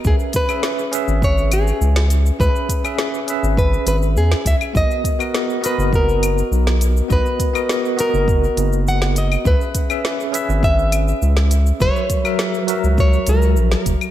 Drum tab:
HH |--x---x---x---x-|--x---x---x---x-|--x---x---x---x-|--x---x---x---x-|
SH |xxxxxxxxxxxxxxxx|xxxxxxxxxxxxxxxx|xxxxxxxxxxxxxxxx|xxxxxxxxxxxxxxxx|
CL |---x------x-----|---x-----------x|---x------x-----|---x-----------x|
SD |----o--------o--|----o--------o--|----o--------o--|----o--------o--|
BD |o-o-----o-------|o-o-----o-----o-|o-o-----o-------|o-o-----o-------|

HH |--x---x---x---x-|--x---x---x---x-|
SH |xxxxxxxxxxxxxxxx|xxxxxxxxxxxxxxxx|
CL |---x------x-----|---x-----------x|
SD |----o--------o--|----o--------o--|
BD |o-o-----o-------|o-o-----o-----o-|